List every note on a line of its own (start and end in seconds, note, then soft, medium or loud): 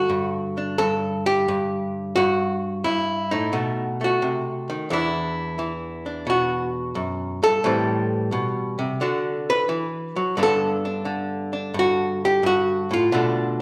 0.00 2.15 D3 medium
0.00 0.78 F#4 loud
0.10 0.78 G2 medium
0.58 2.13 D4 soft
0.78 1.47 G2 medium
0.78 1.25 A4 medium
1.26 2.15 G4 medium
1.48 2.14 G2 medium
2.16 2.84 G2 medium
2.16 2.84 F#4 loud
2.84 3.32 G2 medium
2.84 3.53 E4 medium
3.31 3.52 A2 medium
3.31 4.90 D#4 medium
3.53 4.21 B2 medium
3.53 4.00 A3 soft
4.01 4.88 A3 soft
4.01 4.92 F#4 medium
4.22 4.69 C3 medium
4.70 4.91 D#3 medium
4.90 6.95 E2 medium
4.90 5.58 E3 medium
4.90 6.05 D4 medium
4.90 6.29 E4 medium
5.59 7.64 E3 medium
6.06 7.62 D4 soft
6.27 7.61 B2 medium
6.27 7.43 F#4 medium
6.95 7.42 F#2 medium
7.43 7.64 G2 medium
7.43 9.49 A4 loud
7.64 8.32 A2 medium
7.64 9.01 E3 soft
7.64 9.01 G3 medium
7.64 8.12 C4 medium
8.32 8.78 B2 medium
8.79 9.01 C3 medium
9.01 9.68 D3 medium
9.01 10.38 D4 soft
9.01 10.36 F#4 soft
9.50 10.39 B4 loud
9.69 10.16 E3 medium
10.16 10.37 F#3 medium
10.37 11.73 G2 medium
10.37 11.04 D3 medium
10.37 13.14 B3 soft
10.37 10.85 D4 soft
10.43 11.78 A4 loud
10.85 11.53 D4 soft
11.05 13.12 D3 medium
11.53 13.10 D4 soft
11.74 12.42 G2 medium
11.79 12.24 F#4 medium
12.25 12.45 G4 medium
12.43 12.91 G2 medium
12.43 12.92 F#4 medium
12.91 13.12 A2 medium
12.91 13.62 F4 medium
13.12 13.62 B2 medium
13.12 13.62 D3 medium
13.12 13.62 A3 soft
13.12 13.59 D4 medium